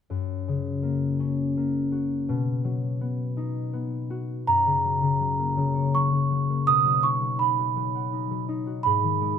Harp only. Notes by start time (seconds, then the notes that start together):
0.10 F#2
0.48 C#3
0.83 A#3
1.20 C#4
1.57 A#3
1.92 F#4
2.29 B2
2.64 F#3
3.01 B3
3.37 D#4
3.73 B3
4.10 F#4
4.47 F#2
4.66 C#3
4.84 F#3
5.02 C#3
5.20 F#3
5.39 A#3
5.57 C#3
5.75 C#5
5.95 F#3
6.13 C#3
6.30 F#3
6.50 A#3
6.67 B2
6.85 F#3
7.03 D#4
7.21 F#3
7.40 D#4
7.58 F#4
7.76 F#3
7.95 F#5
8.12 D#4
8.31 F#3
8.48 D#4
8.67 F#4
8.86 G#2
9.03 D#3
9.21 G#3